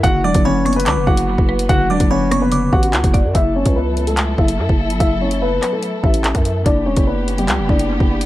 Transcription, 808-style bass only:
\new Staff \with { instrumentName = "808-style bass" } { \clef bass \time 4/4 \key fis \phrygian \tempo 4 = 145 fis,,8 e,,16 fis,,4~ fis,,16 cis,16 fis,,16 fis,,8. fis,,8. | fis,,8 e,,16 fis,,4.~ fis,,16 a,,8 cis,16 fis,,8 fis,16 | fis,,8. cis,4.~ cis,16 fis,,8 fis,16 fis,,8 g,,16 | fis,,4. r4 a,,8. fis,8. |
fis,,8 e,,16 fis,,4~ fis,,16 cis,16 fis,,16 fis,,8. fis,,8. | }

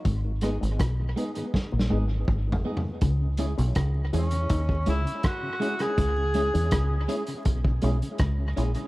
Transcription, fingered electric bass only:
\new Staff \with { instrumentName = "Fingered electric bass" } { \clef bass \time 4/4 \key cis \dorian \tempo 4 = 81 gis,,8. gis,,16 b,,8 r8. ais,,16 gis,,8 gis,,8 r8 | cis,8. b,,16 cis,8 e,8 dis,8 cis,16 r4 r16 | cis,8. e,16 cis,8 r8 b,,8 b,,16 r16 cis,8 ais,,16 r16 | }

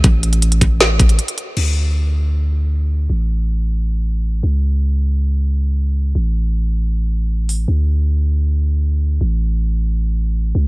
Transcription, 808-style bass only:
\new Staff \with { instrumentName = "808-style bass" } { \clef bass \time 4/4 \key a \major \tempo 4 = 157 a,,2. r4 | d,1 | a,,2.~ a,,8 cis,8~ | cis,1 |
a,,1 | d,1 | a,,2.~ a,,8 cis,8 | }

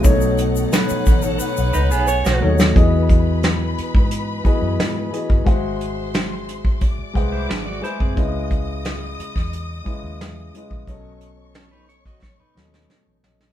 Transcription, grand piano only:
\new Staff \with { instrumentName = "Grand piano" } { \time 4/4 \key e \major \tempo 4 = 89 <b, fis a dis' cis''>4.~ <b, fis a dis' cis''>16 r4. r16 <b, fis a dis' cis''>8 | <e b fis' gis' dis''>4.~ <e b fis' gis' dis''>16 r8. <e b fis' gis' dis''>4 <e b fis' gis' dis''>8 | <gis fis' gis' bis' e'' fis''>4.~ <gis fis' gis' bis' e'' fis''>16 r8. <gis gis' b' bis' e'' fis''>4 <gis gis' b' bis' e'' gis''>8 | <cis gis e' b' dis''>4.~ <cis gis e' b' dis''>16 r8. <cis gis e' b' dis''>4 <cis gis e' b' dis''>8 |
<b, fis cis' a' dis''>4.~ <b, fis cis' a' dis''>16 r8. <b, fis cis' a' dis''>4 <b, fis cis' a' dis''>8 | }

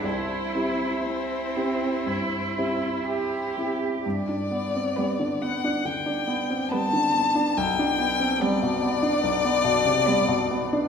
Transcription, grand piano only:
\new Staff \with { instrumentName = "Grand piano" } { \time 4/4 \key c \major \tempo 4 = 67 c,8 <c' e' g'>4 <c' e' g'>8 g,8 <c' e' g'>4 <c' e' g'>8 | \key g \major g,16 d'16 b16 c'16 b16 d16 b16 d'16 d16 d'16 b16 c'16 b16 d16 b16 d'16 | b,,16 d'16 b16 c'16 b16 b,16 b16 d'16 b,,16 b16 b,16 c16 b16 b,16 b16 d'16 | }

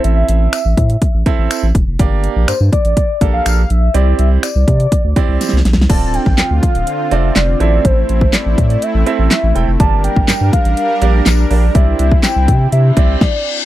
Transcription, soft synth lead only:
\new Staff \with { instrumentName = "Soft synth lead" } { \time 4/4 \key d \minor \tempo 4 = 123 e''8 e''2 r4. | r4 c''8 d''4~ d''16 f''8. e''8 | d''8 e''8 d''2~ d''8 r8 | a''8 g''4 f''4 e''8 d''8 d''8 |
c''4 d''4 e''4 e''8. r16 | a''8 g''4 f''4. d''4 | e''4 g''4 e''4 d''8. r16 | }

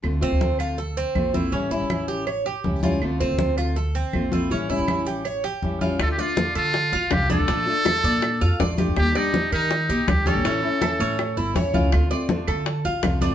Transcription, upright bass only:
\new Staff \with { instrumentName = "Upright bass" } { \clef bass \time 4/4 \key d \minor \tempo 4 = 162 d,8 d16 d,2 r16 bes,,4 | a,,8 a,16 a,,2 r16 cis,4 | d,8 d16 d,2 r16 bes,,4 | a,,8 a,16 a,,2 r16 a,,4 |
d,8 r4 d4 a,,16 r16 c,8. c,16 | bes,,8 r4 bes,4 f,16 r16 a,,8. f,16 | ees,8 r4 ees4 bes,,16 r16 d,8. bes,,16 | a,,8 r4 a,4 g,,8 a,,8 cis,8 |
d,8 r4 d4 a,,16 r16 c,8. a,,16 | }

